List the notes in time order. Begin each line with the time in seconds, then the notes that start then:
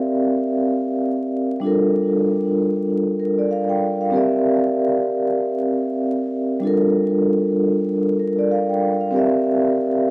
Already playing: C4 G4 A#4 D5 E5
1.60 G3 D4 F4
1.65 A4 A#4
3.20 A#4
3.39 D5
3.51 F5
3.69 G5
4.01 F5
4.11 C4 G4 A#4
4.16 D5 E5
6.60 G3 D4 F4
6.65 A4 A#4
8.20 A#4
8.39 D5
8.51 F5
8.69 G5
9.01 F5
9.11 C4 G4 A#4
9.16 D5 E5